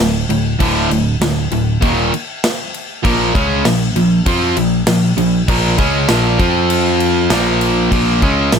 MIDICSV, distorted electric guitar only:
0, 0, Header, 1, 2, 480
1, 0, Start_track
1, 0, Tempo, 609756
1, 475, Time_signature, 4, 2, 24, 8
1, 6764, End_track
2, 0, Start_track
2, 0, Title_t, "Distorted electric guitar"
2, 0, Program_c, 0, 30
2, 0, Note_on_c, 0, 38, 68
2, 0, Note_on_c, 0, 45, 78
2, 187, Note_off_c, 0, 38, 0
2, 187, Note_off_c, 0, 45, 0
2, 235, Note_on_c, 0, 38, 64
2, 240, Note_on_c, 0, 45, 66
2, 427, Note_off_c, 0, 38, 0
2, 430, Note_off_c, 0, 45, 0
2, 469, Note_on_c, 0, 38, 91
2, 476, Note_on_c, 0, 45, 90
2, 481, Note_on_c, 0, 50, 96
2, 705, Note_off_c, 0, 38, 0
2, 709, Note_off_c, 0, 45, 0
2, 711, Note_off_c, 0, 50, 0
2, 716, Note_on_c, 0, 38, 59
2, 721, Note_on_c, 0, 45, 77
2, 908, Note_off_c, 0, 38, 0
2, 910, Note_off_c, 0, 45, 0
2, 958, Note_on_c, 0, 38, 56
2, 963, Note_on_c, 0, 45, 74
2, 1149, Note_off_c, 0, 38, 0
2, 1151, Note_off_c, 0, 45, 0
2, 1196, Note_on_c, 0, 38, 61
2, 1198, Note_on_c, 0, 45, 62
2, 1388, Note_off_c, 0, 38, 0
2, 1389, Note_off_c, 0, 45, 0
2, 1424, Note_on_c, 0, 39, 105
2, 1432, Note_on_c, 0, 46, 102
2, 1436, Note_on_c, 0, 51, 102
2, 1662, Note_off_c, 0, 39, 0
2, 1666, Note_off_c, 0, 46, 0
2, 1668, Note_off_c, 0, 51, 0
2, 2390, Note_on_c, 0, 46, 90
2, 2393, Note_on_c, 0, 53, 96
2, 2402, Note_on_c, 0, 58, 102
2, 2625, Note_off_c, 0, 46, 0
2, 2627, Note_off_c, 0, 53, 0
2, 2631, Note_off_c, 0, 58, 0
2, 2634, Note_on_c, 0, 49, 94
2, 2638, Note_on_c, 0, 56, 82
2, 2644, Note_on_c, 0, 61, 105
2, 2867, Note_off_c, 0, 49, 0
2, 2869, Note_off_c, 0, 56, 0
2, 2872, Note_off_c, 0, 61, 0
2, 2873, Note_on_c, 0, 46, 61
2, 2876, Note_on_c, 0, 53, 71
2, 3066, Note_off_c, 0, 46, 0
2, 3067, Note_off_c, 0, 53, 0
2, 3117, Note_on_c, 0, 46, 64
2, 3119, Note_on_c, 0, 53, 72
2, 3308, Note_off_c, 0, 46, 0
2, 3309, Note_off_c, 0, 53, 0
2, 3355, Note_on_c, 0, 53, 95
2, 3360, Note_on_c, 0, 60, 96
2, 3367, Note_on_c, 0, 65, 103
2, 3588, Note_off_c, 0, 53, 0
2, 3590, Note_off_c, 0, 60, 0
2, 3593, Note_off_c, 0, 65, 0
2, 3595, Note_on_c, 0, 46, 64
2, 3601, Note_on_c, 0, 53, 80
2, 3787, Note_off_c, 0, 46, 0
2, 3789, Note_off_c, 0, 53, 0
2, 3838, Note_on_c, 0, 46, 66
2, 3841, Note_on_c, 0, 53, 73
2, 4028, Note_off_c, 0, 46, 0
2, 4030, Note_off_c, 0, 53, 0
2, 4074, Note_on_c, 0, 46, 70
2, 4078, Note_on_c, 0, 53, 81
2, 4266, Note_off_c, 0, 46, 0
2, 4268, Note_off_c, 0, 53, 0
2, 4317, Note_on_c, 0, 46, 83
2, 4325, Note_on_c, 0, 53, 97
2, 4329, Note_on_c, 0, 58, 95
2, 4548, Note_off_c, 0, 46, 0
2, 4548, Note_off_c, 0, 53, 0
2, 4551, Note_off_c, 0, 58, 0
2, 4551, Note_on_c, 0, 49, 87
2, 4555, Note_on_c, 0, 56, 102
2, 4561, Note_on_c, 0, 61, 99
2, 4785, Note_off_c, 0, 49, 0
2, 4787, Note_off_c, 0, 56, 0
2, 4788, Note_on_c, 0, 46, 84
2, 4790, Note_off_c, 0, 61, 0
2, 4792, Note_on_c, 0, 53, 98
2, 4797, Note_on_c, 0, 58, 104
2, 5020, Note_off_c, 0, 53, 0
2, 5024, Note_off_c, 0, 46, 0
2, 5028, Note_off_c, 0, 58, 0
2, 5030, Note_on_c, 0, 53, 96
2, 5038, Note_on_c, 0, 60, 84
2, 5040, Note_on_c, 0, 65, 84
2, 5741, Note_off_c, 0, 53, 0
2, 5744, Note_on_c, 0, 46, 81
2, 5749, Note_off_c, 0, 60, 0
2, 5750, Note_off_c, 0, 65, 0
2, 5750, Note_on_c, 0, 53, 103
2, 5755, Note_on_c, 0, 58, 106
2, 6220, Note_off_c, 0, 46, 0
2, 6225, Note_off_c, 0, 53, 0
2, 6227, Note_off_c, 0, 58, 0
2, 6229, Note_on_c, 0, 46, 88
2, 6236, Note_on_c, 0, 53, 85
2, 6240, Note_on_c, 0, 58, 98
2, 6465, Note_off_c, 0, 46, 0
2, 6468, Note_off_c, 0, 53, 0
2, 6470, Note_off_c, 0, 58, 0
2, 6473, Note_on_c, 0, 49, 77
2, 6476, Note_on_c, 0, 56, 92
2, 6482, Note_on_c, 0, 61, 89
2, 6707, Note_off_c, 0, 49, 0
2, 6708, Note_off_c, 0, 56, 0
2, 6711, Note_off_c, 0, 61, 0
2, 6717, Note_on_c, 0, 46, 62
2, 6721, Note_on_c, 0, 53, 69
2, 6764, Note_off_c, 0, 46, 0
2, 6764, Note_off_c, 0, 53, 0
2, 6764, End_track
0, 0, End_of_file